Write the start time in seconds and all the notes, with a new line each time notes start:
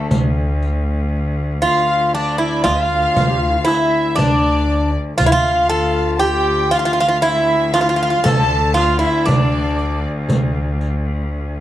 Already playing: D2 A4
0.11 D2, riq, darbuka dum
0.62 riq
1.62 F4 F5, riq, darbuka ka
2.14 D4 D5
2.38 E4
2.64 D2 F4 F5, riq, darbuka tek
3.16 D2, riq, darbuka dum
3.30 G4
3.39 F4
3.50 E4
3.58 F4
3.65 E4 E5, riq, darbuka tek
4.16 D2 D4 D5, riq, darbuka dum
4.69 riq, darbuka ka
5.18 D2 F4 F5, riq, darbuka dum
5.26 E4
5.32 F4 F5
5.69 A4, riq, darbuka ka
6.15 A5
6.19 G4 G5
6.71 F4 F5, riq, darbuka ka
6.79 F4
6.85 F4
6.93 F4
7.00 F4
7.08 F4
7.19 E4 F4, riq
7.25 E4 E5
7.74 F4 F5, riq, darbuka tek
7.81 E4 F4
7.89 F4
7.96 F4
8.03 F4
8.10 F4
8.24 D2 A4 A5, riq, darbuka dum
8.74 F4, riq, darbuka tek
8.78 F5
8.99 E4
9.04 E5
9.26 D2 D4 D5, riq, darbuka dum
9.79 riq
10.29 D2, riq, darbuka dum
10.81 riq, darbuka ka